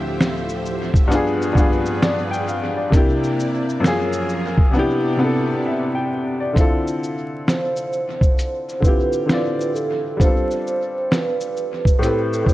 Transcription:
Already playing: D2 A2 D3 F3 A3 C4 E4 F4 G4 A4 C5 E5
0.21 snare, closed hi-hat, shaker
0.49 shaker
0.66 shaker
0.94 kick, shaker
1.07 G2 B3 D4 G#4 B4
1.12 F4 G#4, closed hi-hat, shaker
1.42 shaker
1.53 G2 B3 D4, kick
1.57 F4 G#4, shaker
1.86 shaker
2.02 D5, snare, closed hi-hat, shaker
2.31 G5, shaker
2.47 F5, shaker
2.77 D5
2.90 C3 A#3 D4 E4 D5, kick, closed hi-hat, shaker
2.95 E4 G4
3.24 shaker
3.40 shaker
3.69 shaker
3.80 F#2 F3 A#3 C#4 G#4 A#4
3.84 F4 G#4, snare, closed hi-hat, shaker
4.13 shaker
4.29 shaker
4.58 kick
4.71 C3 B3 D4 E4 D5
4.77 E4 G4
5.17 C3 B3 D4
5.23 E4 A4
5.66 E5
5.95 G5
6.40 D5
6.53 D3 C4 E4, kick, closed hi-hat, shaker
6.59 F4 A4
6.87 shaker
7.03 shaker
7.48 C5, snare, closed hi-hat, shaker
7.76 shaker
7.93 shaker
8.21 kick, shaker
8.39 closed hi-hat, shaker
8.69 shaker
8.80 D3 C4 E4 B4, kick
8.84 F4 G4, shaker
9.13 shaker
9.26 D3 C4 E4, snare, closed hi-hat, shaker
9.31 F4 D5
9.61 shaker
9.75 A4, shaker
10.17 G3 B3 D4 C5, kick, closed hi-hat, shaker
10.22 C4 F4 A4
10.51 shaker
10.67 shaker
11.11 B4, snare, closed hi-hat, shaker
11.41 shaker
11.57 shaker
11.85 kick, shaker
11.99 A2 C4 E4 A4
12.03 G4 B4, closed hi-hat, shaker
12.33 shaker
12.44 A2 C4 E4 C5, kick
12.49 G4, shaker

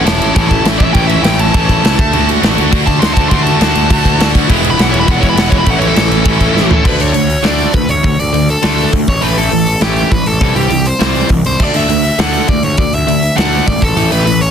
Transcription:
0.05 E1 A2 E3 A3 C#4 E4 C#5 A5, snare, crash
0.19 A1 C#5 A5, crash
0.34 A1 A2 E3 A3 C#4 E4 C#5 A5, kick, crash
0.49 A1 A5, kick, crash
0.64 A1 A2 E3 A3 C#4 E4, snare, crash
0.78 A1 E5, kick, crash
0.93 A1 A2 E3 A3 C#4 E4 G5, kick, crash
1.07 E5, crash
1.23 A1 A2 E3 A3 C#4 E4 G5, snare, crash
1.38 A1 A5, crash
1.54 A1 A2 E3 A3 C#4 E4, kick, crash
1.69 A1, kick, crash
1.83 C#2 A2 E3 A3 C#4 E4 A5, snare, crash
1.99 D2 A5, kick, crash
2.13 D2 D3 A3 D4 F#4, crash
2.29 crash
2.42 A1 D3 A3 D4 F#4, snare, crash
2.58 D2, crash
2.71 D2 D3 A3 D4 F#4, kick, crash
2.86 D2 A5, kick, crash
3.00 D2 D3 A3 D4 F#4 C6, snare, crash
3.14 D2 A5, kick, crash
3.29 D2 D3 A3 D4 F#4 C6, kick, crash
3.43 A5, crash
3.59 D2 D3 A3 D4 F#4, snare, crash
3.75 D2, crash
3.90 D2 D3 A3 D4 F#4, kick, crash
4.05 D2, kick, crash
4.19 D2 D3 A3 D4 F#4, snare, crash
4.35 kick, crash
4.49 E1 E3 G#3 B3 E4, kick, crash
4.64 crash
4.70 B5
4.77 B1 E3 G#3 B3 E4, snare, crash
4.82 F#5
4.91 E1 C#5, crash
5.00 B5
5.07 E1 E3 G#3 B3 E4, kick, crash
5.11 F#5
5.19 E1 C#5, kick, crash
5.29 B5
5.36 E1 E3 G#3 B3 E4 F#5, snare, crash
5.50 E1 C#5, kick, crash
5.58 B5
5.65 A1 A2 E3 A3 C#4 E4, kick, crash
5.70 F#5
5.79 C#5, crash
5.87 A4
5.94 A1 A2 E3 A3 C#4 E4, snare, crash
6.10 A1, crash
6.24 A1 A2 E3 A3 C#4 E4, kick, crash
6.40 A1, kick, crash
6.53 A1 A2 E3 A3 C#4 E4, snare
6.71 A4, floor tom
6.83 D2 D3 A3 D4 B4, kick, crash
7.00 D2 C#5, open hi-hat
7.13 D2 D3 A3, open hi-hat
7.30 open hi-hat
7.43 D2 D3 A3 D4, snare, open hi-hat
7.47 D5
7.59 open hi-hat
7.73 D2 D3 A3 B4, kick, open hi-hat
7.89 D2 C#5, open hi-hat
8.03 D2 D3 A3, kick, open hi-hat
8.19 D2 D5, open hi-hat
8.33 D2 D3 A3, open hi-hat
8.49 A4, open hi-hat
8.62 D2 D3 A3 D4, snare, open hi-hat
8.78 open hi-hat
8.92 D2 D3 A3, kick, open hi-hat
9.08 A1 C#5, kick, open hi-hat
9.21 A1 A2 E3 A3 B4, open hi-hat
9.38 A1 A4, open hi-hat
9.51 A1 A2 E3, open hi-hat
9.67 open hi-hat
9.81 A1 A2 E3 A3 G4, snare, open hi-hat
9.96 open hi-hat
10.11 A1 A2 E3 B4, kick, open hi-hat
10.26 A1 A4, open hi-hat
10.41 C2 C3 E3 G3, kick, open hi-hat
10.56 C2 G4, open hi-hat
10.70 C2 C3 E3, open hi-hat
10.86 C5, open hi-hat
10.99 C2 C3 E3 G3, snare, open hi-hat
11.15 open hi-hat
11.29 C2 C3 E3, kick, open hi-hat
11.45 C2 C5, open hi-hat
11.60 D2 D3 A3 D4 D5, kick, crash
11.74 D2 E5, open hi-hat
11.89 D2 D3 A3, open hi-hat
12.04 open hi-hat
12.18 D2 D3 A3 D4 F#5, snare, open hi-hat
12.33 open hi-hat
12.48 D2 D3 A3 D5, kick, open hi-hat
12.63 D2 C#5, open hi-hat
12.77 D2 D3 A3 D5, kick, open hi-hat
12.93 D2 E5, open hi-hat
13.07 D2 D3 A3, open hi-hat
13.23 open hi-hat
13.36 D2 D3 A3 D4 F#5, snare, open hi-hat
13.53 open hi-hat
13.67 G#1 D3 A3 D5, kick, open hi-hat
13.82 A1 A4, kick, open hi-hat
13.96 A1 A2 E3 A3, open hi-hat
14.11 A1 B4, open hi-hat
14.26 A1 A2 E3, open hi-hat
14.41 C#5, open hi-hat

